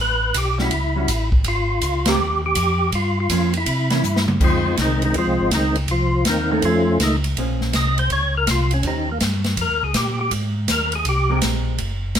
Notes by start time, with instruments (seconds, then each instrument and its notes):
Already playing: tonewheel organ A1
0.01 tonewheel organ B4
0.34 tonewheel organ B1 G4, kick, hi-hat pedal, ride
0.58 hollow-body jazz guitar G3 C#4 F#4, tonewheel organ E4, snare
0.71 tonewheel organ C#2, kick, ride
0.96 hollow-body jazz guitar G3 C#4 F#4
1.08 tonewheel organ A1, kick, hi-hat pedal, ride
1.32 kick
1.44 tonewheel organ G#1 F4, kick, ride
1.81 tonewheel organ C#2, kick, hi-hat pedal, ride
2.05 hollow-body jazz guitar G#3 C4 G4 A#4, tonewheel organ G4, snare, ride
2.19 tonewheel organ D#2
2.46 tonewheel organ G4
2.55 tonewheel organ F2, kick, hi-hat pedal, ride
2.92 tonewheel organ G2 F4, kick, ride
3.20 tonewheel organ F4
3.30 tonewheel organ F2, hollow-body jazz guitar F3 A#3 C#4, kick, hi-hat pedal, ride
3.53 ride
3.57 tonewheel organ E4
3.66 tonewheel organ C3, kick, ride
3.90 hollow-body jazz guitar E3 A#3 C#4, snare, ride
4.03 tonewheel organ G2, hi-hat pedal
4.16 snare
4.28 mid tom
4.40 tonewheel organ F2 F3 G#3 F4, hollow-body jazz guitar D#3 G#3 C4, kick, crash
4.45 tonewheel organ C4
4.77 tonewheel organ C2, kick, snare, hi-hat pedal, ride
4.81 tonewheel organ D#3 G#3 C4 D#4
5.02 tonewheel organ D#3 G#3 C4 D#4, ride
5.14 tonewheel organ D#2 F4, kick, ride
5.18 tonewheel organ F3 G#3 C4
5.27 tonewheel organ C2
5.40 tonewheel organ G#1
5.51 tonewheel organ C#2 D#3 C4 D#4, kick, snare, hi-hat pedal, ride
5.55 tonewheel organ G#3
5.75 ride
5.88 tonewheel organ C2 F3 F4, kick, ride
6.25 tonewheel organ D#2 D#3 C4 D#4, kick, snare, hi-hat pedal, ride
6.29 tonewheel organ A#3
6.51 hollow-body jazz guitar D#3 A3 C#4, tonewheel organ D#3 A#3 C4 D#4
6.62 tonewheel organ F2 F3 A3 C#4 F4, kick, ride
7.00 tonewheel organ C#2 D#3 G#3 A3 D#4, kick, snare, hi-hat pedal, ride
7.24 ride
7.37 tonewheel organ A#1, hollow-body jazz guitar A#3 C#4 G#4 C5, kick, ride
7.61 snare
7.73 tonewheel organ C2 D#5, kick, snare, hi-hat pedal, ride
7.98 tonewheel organ C5, ride
8.10 tonewheel organ C#2 C#5, kick, ride
8.37 tonewheel organ A#4
8.47 tonewheel organ C2 F4, kick, snare, hi-hat pedal, ride
8.71 tonewheel organ C#4, ride
8.83 tonewheel organ D#2, hollow-body jazz guitar D#3 C#4 G4 C5, kick, ride
8.87 tonewheel organ D#4
9.12 tonewheel organ A#3
9.20 tonewheel organ G2, kick, snare, hi-hat pedal, ride
9.44 snare, ride
9.57 tonewheel organ F2, kick, ride
9.61 tonewheel organ A#4
9.70 tonewheel organ D#2
9.83 tonewheel organ C#2 G#4
9.94 tonewheel organ A#2 G4, kick, snare, hi-hat pedal, ride
10.21 tonewheel organ G4
10.31 tonewheel organ G#2, kick, ride
10.68 tonewheel organ D#2 A#4, kick, snare, hi-hat pedal, ride
10.92 tonewheel organ G#4, ride
11.05 tonewheel organ C2 G4, kick, ride
11.29 hollow-body jazz guitar G#3 C4 G4 A#4, tonewheel organ G4
11.42 tonewheel organ A#1, kick, snare, hi-hat pedal, ride
11.78 tonewheel organ F#1, kick, ride
12.15 tonewheel organ G#1, kick, snare, hi-hat pedal, ride